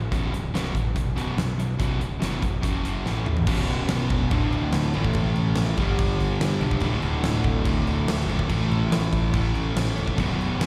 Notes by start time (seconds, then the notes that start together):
Already playing: E3
0.11 B0 B1 F#2 B2, kick, closed hi-hat
0.32 B0 B1 F#2, closed hi-hat
0.53 B0 B1 F#2 B2, snare, closed hi-hat
0.74 A1 B1 F#2, kick, closed hi-hat
0.95 B0 B1 F#2, kick, closed hi-hat
1.16 B0 B1 F#2 B2, closed hi-hat
1.37 B1 F#2, snare, closed hi-hat
1.58 B1 F#2, closed hi-hat
1.79 B0 B1 F#2 B2, kick, closed hi-hat
1.98 B0 B1 F#2, closed hi-hat
2.20 F#1 B1 F#2 B2, snare, closed hi-hat
2.41 B0 B1 F#2, kick, closed hi-hat
2.61 F#1 F#2 C#3 F#3, kick, closed hi-hat
2.84 F#1 F#2 C#3 F#3, closed hi-hat
3.05 A1 A2 E3 A3, snare
3.26 A2 E3, mid tom
3.37 floor tom
3.47 B0 B1 F#2 B2, kick, crash
3.68 B0, crash
3.89 B0, snare, crash
4.10 E1, kick, crash
4.31 D1 D2 A2 D3, kick, crash
4.52 D1, crash
4.73 D2, snare, crash
4.94 A1 A2 E3 A3, crash
5.04 kick
5.13 A1, kick, crash
5.36 A1, crash
5.55 A1, snare, crash
5.77 G1 G2 D3 G3, kick, crash
5.99 G1, kick, crash
6.19 G1, crash
6.40 G2, snare, crash
6.60 B1 G2 D3 G3, crash
6.71 kick
6.80 D1 D2 A2 D3, kick, crash
7.02 D1, crash
7.23 D1, snare, crash
7.44 D1, kick, crash
7.64 D1 D2 A2 D3, kick, crash
7.83 D1, crash
8.05 D2, snare, crash
8.25 F#1 D3
8.29 D2 A2, crash
8.39 kick
8.48 A1 A2 E3 A3, kick, crash
8.69 A1, crash
8.90 A1, snare, crash
9.13 A1, kick, crash
9.33 A1 A2 E3 A3, kick, crash
9.55 A1, crash
9.75 A1, snare, crash
9.95 C#1 A2 E3 A3, crash
10.08 kick
10.16 B0 B1 F#2 B2, kick, crash
10.38 B0, crash
10.59 B0, snare, crash